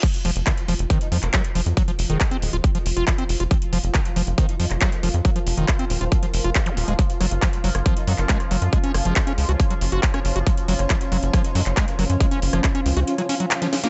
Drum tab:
CC |x---------------|----------------|----------------|----------------|
HH |xxoxxxoxxxoxxxox|xxoxxxoxxxoxxxox|xxoxxxoxxxoxxxox|xxoxxxoxxxoxxxox|
CP |----x------xx---|----x-------x---|----x------xx---|----x-------x---|
SD |----------------|----------------|----------------|----------------|
BD |o---o---o---o---|o---o---o---o---|o---o---o---o---|o---o---o---o---|

CC |----------------|----------------|----------------|----------------|
HH |xxoxxxoxxxoxxxox|xxoxxxoxxxoxxxox|xxoxxxoxxxoxxxox|xxoxxxoxxxoxxxox|
CP |----x------xx---|----x-------x---|----x------xx---|----x-------x---|
SD |--r----r-----r--|--r-----r----r--|---r----r-----r-|---r-----r---ooo|
BD |o---o---o---o---|o---o---o---o---|o---o---o---o---|o---o-----------|